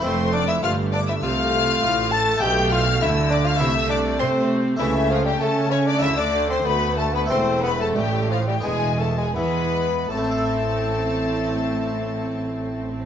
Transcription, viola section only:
\new Staff \with { instrumentName = "Viola section" } { \time 4/4 \key a \minor \tempo 4 = 96 a4 a4 a2 | a2 a4 a4 | a4 a4 a2 | a2 gis4 gis8 r8 |
c'1 | }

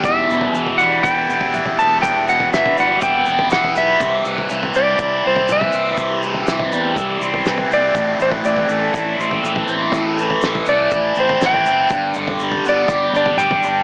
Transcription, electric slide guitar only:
\new Staff \with { instrumentName = "Electric slide guitar" } { \time 4/4 \key e \minor \tempo 4 = 122 e''4. fis''8 g''4. a''8 | g''8 fis''8 e''8 fis''8 g''4 fis''8 e''8~ | e''8 r4 d''4 c''8 e''4~ | e''8 r2. d''8~ |
d''8 c''8 d''4. r4. | r4. d''4 c''8 g''4~ | g''8 r4 d''4 d''8 g''4 | }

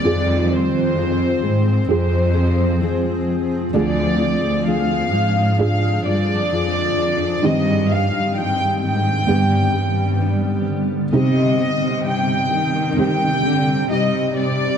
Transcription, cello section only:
\new Staff \with { instrumentName = "Cello section" } { \clef bass \time 4/4 \key c \minor \tempo 4 = 65 f,8. f,8. aes,8 f,4. r8 | d,8. d,8. aes,4 g,8 f,8 f,8 | g,8. g,8. aes,8 g,8 g,4 r8 | c8. c8. ees4 d8 c8 c8 | }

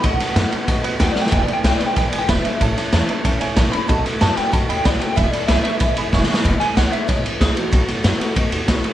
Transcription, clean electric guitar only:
\new Staff \with { instrumentName = "Clean electric guitar" } { \time 4/4 \key e \major \tempo 4 = 188 fis''2 r4 \tuplet 3/2 { g''8 d''8 g''8 } | \tuplet 3/2 { g''8 d''8 g''8 g''8 d''8 g''8 g''8 d''8 g''8 } e''4~ | e''2 r4. b''8 | a''8 b''8 a''8 g''8 a''8 g''8 d''8 g''8 |
e''8 d''8 e''8 e''2~ e''8 | r8 gis''8 fis''8 e''8 cis''8 b'8 gis'8 fis'8~ | fis'8 r2. r8 | }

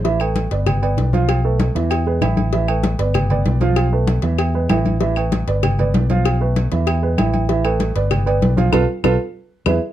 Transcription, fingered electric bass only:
\new Staff \with { instrumentName = "Fingered electric bass" } { \clef bass \time 4/4 \key g \mixolydian \tempo 4 = 193 a,,4. g,,4. b,,4~ | b,,4. e,4. a,,4~ | a,,4. g,,4. b,,4~ | b,,4. e,4. a,,4~ |
a,,4. g,,4. b,,4~ | b,,4. e,4. a,,4~ | a,,4. g,,4. b,,4 | b,,8 r8 b,,8 r4. e,8 r8 | }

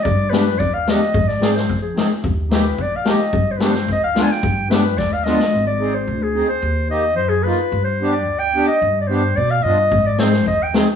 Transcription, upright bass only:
\new Staff \with { instrumentName = "Upright bass" } { \clef bass \time 2/4 \tempo 4 = 109 g,4 ees,4 | aes,4 f,4 | ees,4 bes,,4 | g,4 d,4 |
g,4 ees,4 | aes,,4 d,4 | ees,4 fis,4 | g,4 d,4 |
g,4 b,8 g,8 | aes,4 ees,4 | }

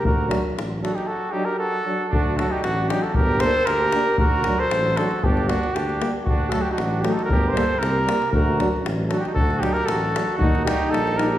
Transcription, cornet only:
\new Staff \with { instrumentName = "Cornet" } { \time 2/4 \tempo 4 = 116 bes'8. r8. a'16 g'16 | a'8 g'16 bes'16 a'4 | fis'8 a'16 g'16 fis'8 g'16 a'16 | bes'8 c''8 bes'4 |
bes'8. c''8. a'8 | g'8 fis'8 g'8. r16 | fis'8 a'16 g'16 fis'8 g'16 a'16 | bes'8 c''8 bes'4 |
bes'8. r8. a'16 g'16 | a'8 g'16 bes'16 a'4 | fis'8 g'8 a'8 bes'8 | }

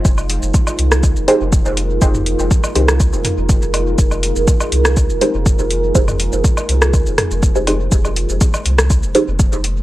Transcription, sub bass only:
\new Staff \with { instrumentName = "Sub bass" } { \clef bass \time 4/4 \key f \minor \tempo 4 = 122 f,,8. f,,16 r8 c,8. f,,16 r16 f,,8 f,,8. | f,,8. f,,16 r8 c,8. f,,16 r16 f,,8 f,,8. | f,,8. f,,16 r8 c,8. f,,16 r16 f,,8 f,,8. | f,,8. f,,16 r8 c,8. f,,16 r16 f,,8 f,,8. |
f,,8. f,,16 r8 c,8. f,,16 r16 f,,8 f,,8. | }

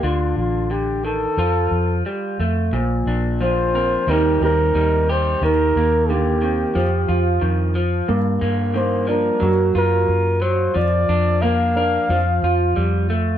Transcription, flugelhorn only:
\new Staff \with { instrumentName = "Flugelhorn" } { \time 4/4 \key bes \major \tempo 4 = 90 f'8 f'8 g'8 a'4. r4 | r4 c''4 bes'8 bes'4 c''8 | bes'4 g'2 r4 | r4 c''8 bes'4 bes'4 c''8 |
d''4 f''2 r4 | }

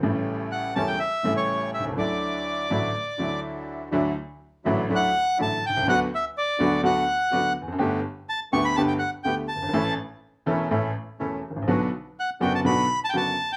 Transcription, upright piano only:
\new Staff \with { instrumentName = "Upright piano" } { \clef bass \time 4/4 \key d \major \tempo 4 = 124 << { <a,, a, cis g a e'>4. <e,, e, cis g a e'>8 r8 <a,, a, cis g a e'>4. | <d, d fis a e'>4. <a,, a, d fis a e'>8 r8 <d, d fis a e'>4. | <d, d fis a e'>8 r4 <a,, a, d fis a e'>8 <d, d fis a e'>8 r8 <a,, a, d fis a e'>8 r8 | <d, d fis b fis'>8 r4 <d, d fis b fis'>8 <d, d fis b fis'>8 r8 <d, d fis b fis'>8 r8 |
<g,, g, d a b g'>8 r4 <d, d a b g'>8 <g,, g, d a b g'>8 r8 <d, d a b g'>8 r8 | <a,, a, e a cis' a'>8 r4 <e,, e, e a cis' a'>8 <a,, a, e a cis' a'>8 r8 <e,, e, e a cis' a'>8 r8 | <b,, b, d fis b fis'>8 r4 <fis,, fis, d fis b fis'>8 <b,, b, d fis b fis'>8 r8 <fis,, fis, d fis b fis'>8 r8 | } \\ { r2. r8 r32 b,,32 c,32 cis,32 | r1 | r2. r8 r32 b,,32 c,32 cis,32 | r2. r8 r32 e,32 f,32 fis,32 |
r2. r8 r32 fis,,32 g,,32 gis,,32 | r2. r8 r32 gis,,32 a,,32 bes,,32 | r1 | } >> }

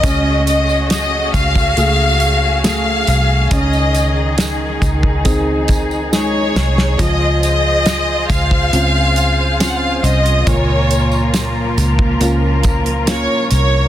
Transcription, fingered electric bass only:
\new Staff \with { instrumentName = "Fingered electric bass" } { \clef bass \time 4/4 \key des \major \tempo 4 = 69 des,4. des,8 des,4. c,8 | des,4. des,2 c,8 | des,4. des,8 des,4. c,8 | des,4. des,8 des,4~ des,16 r16 c,8 | }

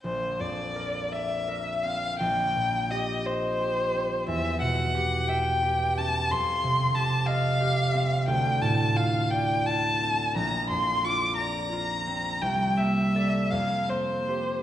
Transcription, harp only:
\new Staff \with { instrumentName = "Harp" } { \time 6/8 \key bes \lydian \tempo 4. = 58 bes,,8 f,8 bes'8 d''8 bes'8 c'8 | bes,,8 bes,8 g'8 ees''8 g'8 c'8 | e,8 b,8 g'8 e''8 g'8 cis'8 | f,8 c8 g'8 ees''8 g'8 c'8 |
d,8 a,8 f'8 d''8 f'8 c'8 | bes,,8 f,8 f'8 d''8 f'8 c'8 | c,8 bes8 <a' d''>8 f,8 bes8 <g' c''>8 | }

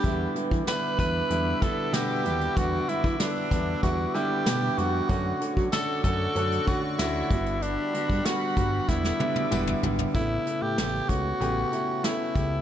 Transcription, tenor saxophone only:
\new Staff \with { instrumentName = "Tenor saxophone" } { \time 4/4 \key e \dorian \tempo 4 = 95 g'8 r8 b'8 b'4 a'8 g'4 | fis'8 e'8 d'4 fis'8 g'4 fis'8~ | fis'8 r8 a'8 a'4 fis'8 e'4 | d'4 fis'4 e'4. r8 |
e'8. g'8. fis'4. e'4 | }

